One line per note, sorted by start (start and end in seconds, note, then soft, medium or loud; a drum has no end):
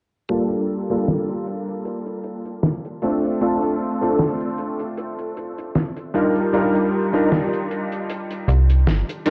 0.29 0.85 G3 medium
0.29 0.85 A#3 medium
0.29 0.85 D4 medium
0.29 0.85 F4 medium
0.29 0.86 A4 medium
0.29 closed hi-hat medium
0.52 closed hi-hat medium
0.89 1.13 G3 medium
0.89 1.13 A#3 medium
0.89 1.14 D4 medium
0.89 1.14 F4 medium
0.89 1.14 A4 medium
0.89 closed hi-hat soft
1.08 snare loud
1.08 closed hi-hat loud
1.29 closed hi-hat medium
1.47 closed hi-hat medium
1.68 closed hi-hat soft
1.85 closed hi-hat medium
2.06 closed hi-hat soft
2.24 closed hi-hat medium
2.45 closed hi-hat soft
2.63 snare loud
2.63 closed hi-hat medium
2.85 closed hi-hat medium
3.02 3.37 A3 medium
3.02 3.37 C4 medium
3.02 3.37 D4 medium
3.02 3.38 F4 medium
3.02 3.38 A4 medium
3.02 closed hi-hat medium
3.24 closed hi-hat medium
3.41 3.96 A3 medium
3.41 3.97 C4 medium
3.41 3.97 D4 medium
3.41 3.97 F4 medium
3.41 3.97 A4 medium
3.41 closed hi-hat medium
3.62 closed hi-hat medium
4.01 4.25 A3 medium
4.01 4.25 C4 medium
4.01 4.25 D4 medium
4.01 4.25 F4 medium
4.01 4.26 A4 medium
4.01 closed hi-hat soft
4.19 snare loud
4.19 closed hi-hat loud
4.40 closed hi-hat medium
4.58 closed hi-hat medium
4.79 closed hi-hat medium
4.98 closed hi-hat medium
5.19 closed hi-hat soft
5.37 closed hi-hat medium
5.58 closed hi-hat medium
5.75 snare loud
5.75 closed hi-hat loud
5.97 closed hi-hat medium
6.14 6.49 G3 medium
6.14 6.49 D4 medium
6.14 6.49 D#4 medium
6.14 6.49 F4 medium
6.14 6.50 A#4 medium
6.14 closed hi-hat medium
6.36 closed hi-hat medium
6.53 7.08 G3 medium
6.53 7.08 D4 medium
6.53 7.09 D#4 medium
6.53 7.09 F4 medium
6.53 7.09 A#4 loud
6.53 closed hi-hat medium
6.75 closed hi-hat medium
7.13 7.37 G3 medium
7.13 7.37 D4 medium
7.13 7.37 D#4 medium
7.13 7.37 F4 medium
7.13 7.37 A#4 medium
7.13 closed hi-hat medium
7.32 snare loud
7.32 closed hi-hat loud
7.53 closed hi-hat soft
7.71 closed hi-hat medium
7.92 closed hi-hat medium
8.10 closed hi-hat medium
8.31 closed hi-hat medium
8.48 8.89 C2 loud
8.48 closed hi-hat medium
8.70 closed hi-hat medium
8.87 9.03 G1 medium
8.87 snare loud
8.87 closed hi-hat loud
9.09 closed hi-hat medium
9.26 9.30 G3 medium
9.26 9.30 D4 medium
9.26 9.30 D#4 medium
9.26 9.30 F4 medium
9.26 closed hi-hat medium